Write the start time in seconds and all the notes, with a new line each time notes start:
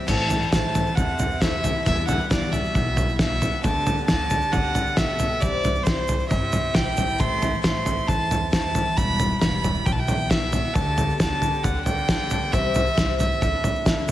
0.08 A2 E3 A3 C4 E4 A5, kick, floor tom, crash, shaker
0.30 floor tom, shaker
0.41 A3 C4 E4, shaker
0.52 A2 E3 A3 C4 E4 A5, kick, snare, floor tom, shaker
0.74 E3 A3 C4 E4, floor tom, shaker
0.86 A3 C4 E4, shaker
0.95 E2 C3 F#5, kick, floor tom, shaker
1.08 A3 C4 E4
1.19 floor tom, shaker
1.31 shaker
1.41 A2 C3 E3 A3 C4 E4 E5, kick, snare, floor tom, shaker
1.52 A3 C4 E4
1.64 E3 A3 C4 E4, floor tom, shaker
1.74 A3 C4 E4
1.84 E2 B2 E3 G3 B3 E4 E5, kick, floor tom, shaker
2.07 D3 F#5, floor tom, shaker
2.19 E3 G3 B3 E4, shaker
2.30 E2 B2 E3 G3 B3 E4 D5, kick, snare, floor tom, shaker
2.51 B2 E3 G3 B3 E5, floor tom, shaker
2.56 E4
2.64 shaker
2.75 B1, kick, floor tom, shaker
2.85 E3 G3 B3 E4
2.97 floor tom, shaker
3.09 shaker
3.18 E2 B2 E3 G3 B3 E4 E5, kick, snare, floor tom, shaker
3.29 E3 G3 B3 E4
3.40 E3 G3 B3 E4, floor tom, shaker
3.52 E3 G3 B3 E4
3.63 D2 D3 A3 B3 G4 A5, kick, floor tom, shaker
3.87 floor tom, shaker
3.96 A3 B3 G4, shaker
4.07 D2 D3 A3 B3 G4 A5, kick, snare, floor tom, shaker
4.30 D3 A3 B3 G4, floor tom, shaker
4.41 A3 B3 G4, shaker
4.52 D2 D3 F#5, kick, floor tom, shaker
4.63 A3 B3 G4
4.75 floor tom, shaker
4.86 shaker
4.96 B2 D3 A3 B3 G4 E5, kick, snare, floor tom, shaker
5.07 A3 B3 G4
5.19 D3 A3 B3 G4, floor tom, shaker
5.29 A3 B3 G4
5.41 C2 G2 C3 E3 G3 C4 E4 D5, kick, floor tom, shaker
5.64 floor tom, shaker
5.74 G3 C4 E4, shaker
5.84 C2 G2 C3 E3 G3 C4 E4 C5, kick, snare, floor tom, shaker
6.07 E3 G3 C4 E4, floor tom, shaker
6.19 G3 C4 E4, shaker
6.29 G2 C3 E5, kick, floor tom, shaker
6.41 G3 C4 E4
6.53 floor tom, shaker
6.74 B1 C3 E3 G3 C4 E4 G5, kick, snare, floor tom, shaker
6.84 G3 C4 E4
6.95 A1 E3 G3 C4 E4, floor tom, shaker
7.07 G3 C4 E4, shaker
7.18 A1 A2 E3 A3 C4 E4 C6, kick, floor tom, shaker
7.42 floor tom, shaker
7.51 A3 C4 E4, shaker
7.62 A1 A2 E3 A3 C4 E4 C6, kick, snare, floor tom, shaker
7.85 E3 A3 C4 E4, floor tom, shaker
7.98 shaker
8.07 E2 E3 A5, kick, floor tom, shaker
8.18 A3 C4 E4
8.31 floor tom, shaker
8.51 A2 E3 A3 C4 E4 A5, kick, snare, floor tom, shaker
8.63 A3 C4 E4
8.74 E3 A3 C4 E4, floor tom, shaker
8.86 A3 C4 E4
8.96 E1 E2 B2 E3 G3 B3 E4 B5, kick, floor tom, shaker
9.19 floor tom, shaker
9.31 E3 G3 B3 E4, shaker
9.40 E1 E2 B2 E3 G3 B3 E4 B5, kick, snare, floor tom, shaker
9.64 E3 G3 B3 E4, floor tom, shaker
9.75 E3 G3 B3 E4, shaker
9.86 B1 E3 G5, kick, floor tom, shaker
9.92 F#3 A5
9.98 E3 G3 B3 E4 G5
10.08 floor tom, shaker
10.20 shaker
10.30 E2 B2 E3 G3 B3 E4 E5, kick, snare, floor tom, shaker
10.42 E3 G3 B3 E4
10.53 E3 G3 B3 E4, floor tom, shaker
10.64 E3 G3 B3 E4
10.73 D2 D3 A3 A5, kick, floor tom, shaker
10.77 B3 G4
10.98 floor tom, shaker
11.09 A3 B3 G4, shaker
11.19 D2 D3 A3 B3 G4 A5, kick, snare, floor tom, shaker
11.42 D3 A3 B3 G4, floor tom, shaker
11.53 A3 B3 G4, shaker
11.63 D2 D3 F#5, kick, floor tom, shaker
11.75 A3 B3 G4
11.85 D3 G5, floor tom, shaker
11.98 shaker
12.09 D3 A3 B3 G4, kick, snare, floor tom, shaker
12.20 A3 B3 G4
12.30 D3 A3 B3 G4, floor tom, shaker
12.42 A3 B3 G4
12.52 C2 C3 E3 G3 C4 G4 E5, kick, floor tom, shaker
12.75 floor tom, shaker
12.86 G3 C4 G4, shaker
12.97 C2 C3 E3 G3 C4 G4, kick, snare, floor tom, shaker
13.18 A2 E3 G3 C4 G4 E5, floor tom, shaker
13.31 shaker
13.41 D2 D3 A3 D4 E4, kick, floor tom, shaker
13.52 A3 D4 E4
13.64 floor tom, shaker
13.75 shaker
13.85 D3 A3 D4 E4, kick, snare, floor tom, shaker
13.97 A3 D4 E4
14.07 D3